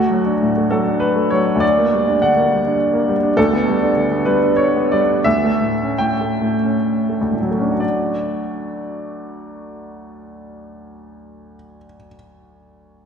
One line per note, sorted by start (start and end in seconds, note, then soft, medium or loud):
0.00 1.54 D2 medium
0.00 0.19 A3 soft
0.00 0.70 F#4 medium
0.10 0.34 F#3 soft
0.26 0.50 D4 soft
0.42 0.65 A2 soft
0.57 0.81 A3 soft
0.71 0.96 F#3 soft
0.71 1.01 A4 medium
0.87 1.36 D4 soft
1.00 1.31 B4 medium
1.16 1.41 A3 soft
1.30 1.56 F#3 soft
1.30 1.61 C#5 medium
1.47 1.62 D4 soft
1.56 3.30 D2 medium
1.60 2.21 D5 medium
1.78 2.01 A#3 soft
1.93 2.16 G3 soft
2.07 2.31 D4 soft
2.22 2.46 D3 soft
2.22 3.37 F#5 medium
2.37 2.60 A#3 soft
2.52 2.74 G3 soft
2.67 3.12 D4 soft
2.94 3.17 A#3 soft
3.08 3.31 G3 soft
3.23 3.37 D4 soft
3.37 5.21 D2 medium
3.37 4.27 A4 medium
3.53 3.76 B3 soft
3.68 3.91 G3 soft
3.82 4.06 D4 soft
3.97 4.21 D3 soft
4.12 4.36 B3 soft
4.25 4.52 G3 soft
4.25 4.58 B4 medium
4.43 4.95 D4 soft
4.56 4.90 C#5 medium
4.76 5.02 B3 soft
4.92 5.19 G3 soft
4.92 5.25 D5 medium
5.09 5.25 D4 soft
5.24 7.19 D2 soft
5.24 6.00 E5 medium
5.44 5.73 A3 soft
5.61 5.92 A2 soft
5.82 6.13 C#4 soft
5.98 6.33 A2 soft
5.98 7.81 G5 medium
6.21 6.54 A3 soft
6.41 6.76 A2 soft
6.63 7.38 C#4 soft
7.09 7.48 A3 soft
7.21 11.55 D2 soft
7.34 7.73 A2 soft
7.41 11.76 F#3 soft
7.51 11.85 A3 soft
7.57 7.81 C#4 soft
7.57 11.95 D4 soft
7.71 12.06 F#4 soft
7.80 12.14 D5 soft